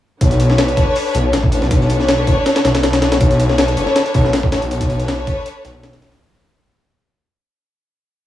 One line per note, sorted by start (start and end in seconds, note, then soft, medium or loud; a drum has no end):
0.21 0.76 B1 loud
0.21 1.50 D4 loud
0.21 1.50 A4 loud
0.21 1.50 B4 loud
0.21 1.50 C#5 loud
0.21 kick loud
0.21 closed hi-hat medium
0.31 snare soft
0.31 closed hi-hat soft
0.40 closed hi-hat medium
0.50 snare medium
0.50 snare soft
0.58 snare loud
0.58 closed hi-hat loud
0.58 closed hi-hat medium
0.68 closed hi-hat soft
0.77 0.86 F#1 loud
0.77 kick medium
0.77 closed hi-hat medium
0.95 closed hi-hat medium
0.95 open hi-hat medium
1.06 snare soft
1.14 1.35 B1 medium
1.14 closed hi-hat medium
1.33 1.60 A1 loud
1.33 snare loud
1.33 closed hi-hat medium
1.43 kick loud
1.52 1.69 D4 medium
1.52 1.69 A4 medium
1.52 1.69 B4 medium
1.52 1.69 C#5 loud
1.52 closed hi-hat medium
1.62 2.26 B1 medium
1.62 snare medium
1.62 closed hi-hat soft
1.71 3.00 D4 loud
1.71 3.00 A4 loud
1.71 3.00 B4 loud
1.71 3.00 C#5 loud
1.71 kick loud
1.71 closed hi-hat loud
1.71 closed hi-hat medium
1.81 snare medium
1.90 closed hi-hat medium
2.00 snare soft
2.08 snare loud
2.08 closed hi-hat loud
2.08 closed hi-hat medium
2.27 2.36 F#1 loud
2.27 kick loud
2.27 closed hi-hat medium
2.46 snare loud
2.46 closed hi-hat medium
2.56 snare loud
2.56 closed hi-hat medium
2.64 3.19 B1 loud
2.64 snare loud
2.64 closed hi-hat medium
2.75 snare loud
2.75 snare soft
2.75 closed hi-hat medium
2.83 snare loud
2.83 closed hi-hat medium
2.93 snare loud
2.93 closed hi-hat medium
3.02 3.19 D4 medium
3.02 3.19 A4 medium
3.02 3.19 B4 medium
3.02 3.19 C#5 loud
3.02 snare loud
3.02 closed hi-hat medium
3.12 snare loud
3.12 closed hi-hat medium
3.20 3.76 B1 loud
3.20 4.50 D4 loud
3.20 4.50 A4 loud
3.20 4.50 B4 loud
3.20 4.50 C#5 loud
3.20 kick loud
3.20 closed hi-hat medium
3.31 snare soft
3.31 closed hi-hat soft
3.40 closed hi-hat medium
3.49 snare medium
3.49 snare soft
3.58 snare loud
3.58 closed hi-hat medium
3.68 closed hi-hat soft
3.77 3.86 F#1 loud
3.77 closed hi-hat medium
3.87 snare medium
3.96 snare loud
3.96 closed hi-hat medium
4.05 snare medium
4.05 closed hi-hat soft
4.14 4.35 B1 medium
4.14 kick medium
4.14 closed hi-hat medium
4.25 snare soft
4.33 4.60 A1 loud
4.33 snare loud
4.33 closed hi-hat medium
4.43 kick loud
4.52 4.69 D4 medium
4.52 4.69 A4 medium
4.52 4.69 B4 medium
4.52 4.69 C#5 loud
4.52 snare loud
4.52 closed hi-hat medium
4.62 5.26 B1 medium
4.62 closed hi-hat soft
4.71 6.00 D4 loud
4.71 6.00 A4 loud
4.71 6.00 B4 loud
4.71 6.00 C#5 loud
4.71 closed hi-hat medium
4.81 kick loud
4.81 snare soft
4.81 closed hi-hat medium
4.90 closed hi-hat soft
4.90 closed hi-hat medium
5.00 snare soft
5.00 closed hi-hat medium
5.08 snare loud
5.08 closed hi-hat medium
5.27 5.36 F#1 loud
5.27 kick loud
5.27 closed hi-hat medium
5.46 closed hi-hat medium
5.65 6.19 B1 loud
5.65 snare loud
5.65 closed hi-hat medium
5.83 snare loud
5.83 closed hi-hat medium
5.93 snare loud
5.93 closed hi-hat medium
6.02 6.19 D4 medium
6.02 6.19 A4 medium
6.02 6.19 B4 medium
6.02 6.19 C#5 loud
6.02 snare loud
6.02 closed hi-hat medium
6.12 snare loud
6.12 closed hi-hat medium